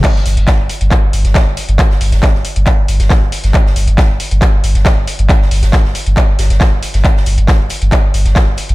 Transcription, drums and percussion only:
0.03 kick, clap, closed hi-hat, crash
0.15 snare
0.26 closed hi-hat, open hi-hat
0.37 closed hi-hat
0.47 kick, snare, clap, closed hi-hat
0.69 closed hi-hat, open hi-hat
0.81 closed hi-hat
0.91 kick, clap, closed hi-hat
1.13 closed hi-hat, open hi-hat
1.25 snare, closed hi-hat
1.35 kick, snare, clap, closed hi-hat
1.57 closed hi-hat, open hi-hat
1.69 closed hi-hat
1.79 kick, clap, closed hi-hat
1.90 snare
2.01 open hi-hat
2.12 snare, closed hi-hat
2.23 kick, snare, clap, closed hi-hat
2.34 snare
2.45 closed hi-hat, open hi-hat
2.56 closed hi-hat
2.66 kick, clap, closed hi-hat
2.88 closed hi-hat, open hi-hat
3.00 snare, closed hi-hat
3.10 kick, snare, clap, closed hi-hat
3.32 closed hi-hat, open hi-hat
3.44 snare, closed hi-hat
3.54 kick, clap, closed hi-hat
3.66 snare
3.76 closed hi-hat, open hi-hat
3.88 closed hi-hat
3.98 kick, snare, clap, closed hi-hat
4.20 closed hi-hat, open hi-hat
4.31 closed hi-hat
4.42 kick, clap, closed hi-hat
4.64 closed hi-hat, open hi-hat
4.75 snare, closed hi-hat
4.85 kick, snare, clap, closed hi-hat
5.07 closed hi-hat, open hi-hat
5.19 closed hi-hat
5.29 kick, clap, closed hi-hat
5.42 snare
5.51 open hi-hat
5.63 snare, closed hi-hat
5.73 kick, snare, clap, closed hi-hat
5.84 snare
5.95 closed hi-hat, open hi-hat
6.06 closed hi-hat
6.17 kick, clap, closed hi-hat
6.39 snare, closed hi-hat, open hi-hat
6.50 snare, closed hi-hat
6.61 kick, snare, clap, closed hi-hat
6.82 closed hi-hat, open hi-hat
6.94 snare, closed hi-hat
7.05 kick, clap, closed hi-hat
7.16 snare
7.26 closed hi-hat, open hi-hat
7.38 closed hi-hat
7.48 kick, snare, clap, closed hi-hat
7.69 closed hi-hat, open hi-hat
7.82 closed hi-hat
7.92 kick, clap, closed hi-hat
8.14 closed hi-hat, open hi-hat
8.25 snare, closed hi-hat
8.35 kick, snare, clap, closed hi-hat
8.57 closed hi-hat, open hi-hat
8.69 closed hi-hat

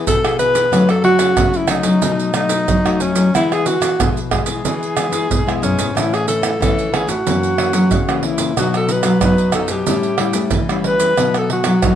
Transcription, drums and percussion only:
0.07 pandeiro, maracas, surdo
0.25 pandeiro, tamborim, maracas
0.39 pandeiro, maracas
0.55 pandeiro, maracas
0.73 pandeiro, tamborim, maracas, surdo
0.89 pandeiro, tamborim, maracas
1.04 pandeiro
1.19 pandeiro, tamborim, maracas
1.37 pandeiro, tamborim, maracas, surdo
1.54 pandeiro, maracas
1.68 pandeiro, tamborim, maracas
1.83 pandeiro, maracas
2.02 pandeiro, maracas, surdo
2.20 pandeiro, maracas
2.34 pandeiro, tamborim, maracas
2.49 pandeiro, maracas
2.68 pandeiro, maracas, surdo
2.86 pandeiro, tamborim, maracas
3.00 pandeiro, maracas
3.16 pandeiro, maracas
3.35 pandeiro, tamborim, maracas, surdo
3.52 pandeiro, tamborim, maracas
3.66 pandeiro, maracas
3.82 pandeiro, tamborim, maracas
4.00 pandeiro, tamborim, maracas, surdo
4.17 pandeiro, maracas
4.31 pandeiro, tamborim, surdo
4.46 pandeiro, maracas
4.65 pandeiro, maracas, surdo
4.83 pandeiro, maracas
4.97 pandeiro, tamborim, maracas
5.13 pandeiro, maracas
5.31 pandeiro, maracas, surdo
5.48 pandeiro, tamborim, maracas
5.63 pandeiro, maracas
5.79 pandeiro, maracas
5.97 pandeiro, tamborim, maracas, surdo
6.14 pandeiro, tamborim, maracas
6.28 pandeiro, maracas
6.43 pandeiro, tamborim, maracas
6.62 pandeiro, tamborim, maracas, surdo
6.79 pandeiro, maracas
6.94 pandeiro, tamborim
7.09 pandeiro, maracas
7.27 pandeiro, maracas, surdo
7.43 pandeiro, maracas
7.58 pandeiro, tamborim
7.73 pandeiro, maracas
7.91 pandeiro, maracas, surdo
8.09 pandeiro, tamborim, maracas
8.23 pandeiro
8.38 pandeiro, maracas
8.57 pandeiro, tamborim, maracas, surdo
8.74 pandeiro, tamborim, maracas
8.89 pandeiro, maracas
9.03 pandeiro, tamborim, maracas
9.21 pandeiro, tamborim, maracas, surdo
9.38 pandeiro, maracas
9.52 pandeiro, tamborim, maracas
9.68 pandeiro, maracas
9.87 pandeiro, maracas, surdo
10.03 pandeiro, maracas
10.18 pandeiro, tamborim
10.33 pandeiro, maracas
10.51 pandeiro, maracas, surdo
10.69 pandeiro, tamborim, maracas
10.84 pandeiro
11.00 pandeiro, maracas
11.18 pandeiro, tamborim, maracas, surdo
11.34 pandeiro, tamborim, maracas
11.50 pandeiro
11.64 pandeiro, tamborim, maracas
11.82 pandeiro, tamborim, maracas, surdo

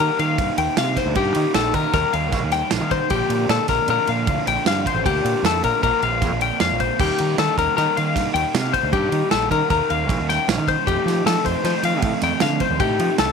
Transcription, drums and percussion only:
0.19 ride
0.38 kick, ride
0.58 ride
0.77 snare, ride
0.97 kick, snare, ride
1.15 kick, ride
1.35 ride
1.54 snare, ride
1.74 kick, ride
1.93 kick, snare, ride
2.13 ride
2.32 kick, snare, ride
2.52 snare, ride
2.71 snare, ride
2.91 kick, ride
3.10 kick, ride
3.30 ride
3.49 snare, ride
3.68 kick, snare, ride
3.88 ride
4.07 ride
4.27 kick, ride
4.47 ride
4.66 snare, ride
4.86 kick, ride
5.06 kick, ride
5.26 ride
5.45 snare, ride
5.64 kick, ride
5.83 kick, ride
6.02 ride
6.22 kick, snare, ride
6.41 ride
6.60 snare, ride
6.80 kick, ride
7.00 kick, crash
7.18 ride
7.38 snare, ride
7.58 kick, ride
7.78 snare, ride
7.97 ride
8.16 kick, snare, ride
8.36 ride
8.55 snare, ride
8.74 kick, ride
8.93 kick, ride
9.12 ride
9.31 snare, ride
9.51 kick, ride
9.70 kick, ride
9.90 ride
10.09 kick, ride
10.30 snare, ride
10.49 snare, ride
10.68 kick, ride
10.87 kick, ride
11.08 snare, ride
11.27 snare, ride
11.45 kick, ride
11.64 snare, ride
11.83 ride
12.02 kick, ride
12.22 snare, ride
12.40 snare, ride
12.60 kick, ride
12.80 kick, ride
13.00 ride
13.18 snare, ride

